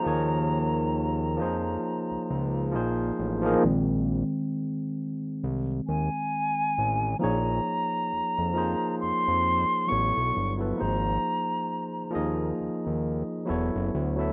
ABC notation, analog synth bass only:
X:1
M:4/4
L:1/16
Q:"Swing 16ths" 1/4=67
K:Bbm
V:1 name="Analog synth bass" clef=bass
E,,6 F,,2 z D,, D,,2 B,,,2 =A,,,2 | B,,,3 z4 z C,,2 E,, z3 =A,,,2 | B,,,2 z2 F,, F,,2 z F,, F,,2 z =A,,, =B,,, =G,,,2 | A,,,2 z4 E,,2 E,, E,,2 z =E,,, ^F,,, =D,,2 |]